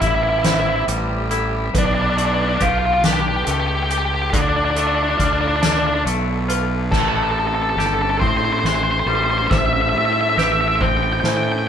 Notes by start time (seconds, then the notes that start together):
Already playing: A2 G3 A3 C4 G4 A4
0.01 A1 E4, kick, closed hi-hat
0.08 E4
0.15 E4
0.23 E4
0.30 E4
0.39 E4
0.44 C4 E4 C5, snare, closed hi-hat
0.54 E4
0.60 E4
0.70 E4
0.76 E4
0.88 A1 G3, closed hi-hat
1.31 E4 A4, closed hi-hat
1.74 B1 B2 B3 B4, kick, closed hi-hat
1.78 D4
1.86 D4
1.95 D4
2.02 D4
2.10 D4
2.17 A3 D4, closed hi-hat
2.26 D4
2.34 D4
2.42 D4
2.49 D4
2.57 D4 G4 B4, kick, closed hi-hat
2.61 B1 F4
2.69 F4
2.79 F4
2.86 F4
2.94 F4
3.04 D4 G4, snare, closed hi-hat
3.13 G4
3.20 G4
3.28 G4
3.36 G4
3.45 C#2 A3 G4 A4, closed hi-hat
3.51 G4
3.60 G4
3.67 G4
3.75 G4
3.83 G4
3.90 G4, closed hi-hat
3.98 G4
4.06 G4
4.14 G4
4.22 G4
4.30 D2 D3 D4 F4 G4 A4, kick, closed hi-hat
4.34 D3 A4
4.41 D4
4.49 D4
4.56 D4
4.65 D4
4.71 D4
4.75 A3 D4 A4, closed hi-hat
4.87 D4
4.95 D4
5.03 D4
5.10 D4
5.18 D2 D4 F4, kick, closed hi-hat
5.25 D4
5.33 D4
5.41 D4
5.48 D4
5.56 D4
5.62 D4 D5, snare, closed hi-hat
5.72 D4
5.79 D4
5.87 D4
5.94 D4
6.05 B1 A3, closed hi-hat
6.48 F4 B4, closed hi-hat
6.91 A1 A2 A3 C4 E4 G4 A4, kick, snare, crash
7.00 A4
7.08 A4
7.16 A4
7.23 A4
7.31 A4
7.36 A4, ride
7.47 A4
7.55 A4
7.63 A4
7.70 A4
7.77 G1 G4 A4, snare, ride
7.86 A4
7.94 A4
8.02 A4
8.10 A4
8.17 A4 C5
8.21 A2 C4, kick, ride
8.27 C5
8.37 C5
8.45 C5
8.53 C5
8.59 C5
8.63 A1 E3 C5, snare, ride
8.75 C5
8.83 C5
8.92 C5
9.00 C5
9.06 A1 G3 A4 C5, ride
9.15 C5
9.24 C5
9.31 C5
9.38 C5
9.47 C5 E5
9.51 A1 A2 A4, kick, snare, ride
9.58 E5
9.66 E5
9.73 E5
9.81 E5
9.89 E5
9.93 A2, ride
9.98 E5
10.05 E5
10.13 E5
10.21 E5
10.29 E5
10.37 A1 G4 B4 E5, snare, ride
10.44 E5
10.52 E5
10.61 E5
10.68 E5
10.76 E5
10.80 C4 C5 G5, kick, ride
10.89 G5
10.97 G5
11.03 G5
11.13 G5
11.20 A2 G5, snare, ride
11.24 E3 C5
11.29 G5
11.37 G5
11.43 G5
11.52 G5
11.59 G5